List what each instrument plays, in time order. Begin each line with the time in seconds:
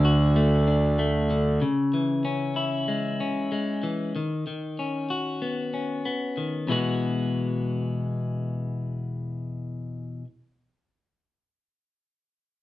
Already playing: fingered electric bass D2, clean electric guitar D3 D4
0.05 clean electric guitar F#4
0.36 clean electric guitar A3
0.68 clean electric guitar D4
0.99 clean electric guitar A3
1.30 clean electric guitar D3
1.62 clean electric guitar C#3
1.94 clean electric guitar E3
2.25 clean electric guitar C#4
2.56 clean electric guitar E4
2.88 clean electric guitar G#3
3.20 clean electric guitar C#4
3.52 clean electric guitar G#3
3.83 clean electric guitar E3
4.16 clean electric guitar D#3
4.47 clean electric guitar D#3
4.79 clean electric guitar C#4
5.10 clean electric guitar F#4
5.42 clean electric guitar B3
5.74 clean electric guitar C#4
6.05 clean electric guitar B3
6.37 clean electric guitar D#3
6.67 clean electric guitar E2 B2 E3 G#3 B3
6.72 clean electric guitar F#4